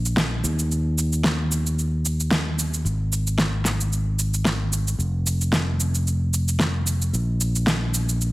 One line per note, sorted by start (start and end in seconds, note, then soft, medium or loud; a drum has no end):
0.00 0.41 A#1 medium
0.05 shaker soft
0.17 snare loud
0.17 shaker soft
0.44 2.82 D#2 medium
0.44 shaker medium
0.59 shaker soft
0.71 shaker soft
0.98 shaker medium
1.13 shaker soft
1.24 snare loud
1.24 shaker soft
1.52 shaker medium
1.66 shaker soft
1.79 shaker soft
2.05 shaker medium
2.20 shaker soft
2.31 snare loud
2.31 shaker soft
2.59 shaker medium
2.74 shaker soft
2.85 4.97 G#1 medium
2.85 shaker soft
3.13 shaker medium
3.27 shaker soft
3.38 snare loud
3.38 shaker soft
3.65 snare medium
3.65 shaker medium
3.81 shaker soft
3.93 shaker soft
4.19 shaker medium
4.34 shaker soft
4.45 snare loud
4.45 shaker soft
4.73 shaker medium
4.88 shaker soft
4.98 7.11 F1 medium
4.98 shaker soft
5.27 shaker medium
5.41 shaker soft
5.53 snare loud
5.53 shaker soft
5.80 shaker medium
5.95 shaker soft
6.07 shaker soft
6.34 shaker medium
6.48 shaker soft
6.60 snare loud
6.60 shaker soft
6.87 shaker medium
7.02 shaker soft
7.13 8.32 A#1 medium
7.13 shaker soft
7.41 shaker medium
7.55 shaker soft
7.67 snare loud
7.67 shaker soft
7.94 shaker medium
8.09 shaker soft
8.21 shaker soft